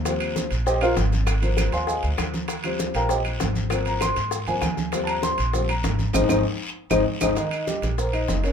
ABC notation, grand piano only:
X:1
M:4/4
L:1/8
Q:1/4=197
K:Eb
V:1 name="Grand piano"
z4 [Gceg] [FBcf] z2 | z3 [cfac'] [Aefa] z3 | z3 [Bfgb] [Gceg] z3 | z b c'3 a3 |
z [=ab] c'3 b3 | [A,CE] [A,CE] z3 [A,CE] z [A,CE] | [E,E]2 [G,G]2 [B,B] [Ee]2 [_D_d] |]
V:2 name="Grand piano" clef=bass
[F,G,C]3 z4 z | z [F,B,C]6- [F,B,C] | z [F,G,C]6- [F,G,C] | [F,B,C]3 z2 [F,B,C] z2 |
[F,G,C]3 z [F,G,C] z3 | z8 | z8 |]